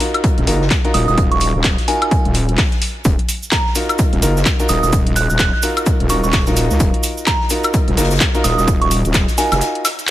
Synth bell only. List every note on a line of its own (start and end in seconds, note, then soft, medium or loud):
0.94 1.03 D#6 medium
1.08 1.14 D#6 medium
1.31 1.48 C#6 medium
1.88 2.25 G#5 medium
3.52 3.70 A#5 medium
4.69 4.78 D#6 medium
4.83 4.89 D#6 medium
5.16 5.25 F#6 medium
5.30 5.36 F#6 medium
5.39 5.48 F#6 medium
5.53 5.59 F#6 medium
6.10 6.19 C#6 medium
6.24 6.30 C#6 medium
7.27 7.45 A#5 medium
8.44 8.53 D#6 medium
8.58 8.64 D#6 medium
8.81 8.98 C#6 medium
9.38 9.75 G#5 medium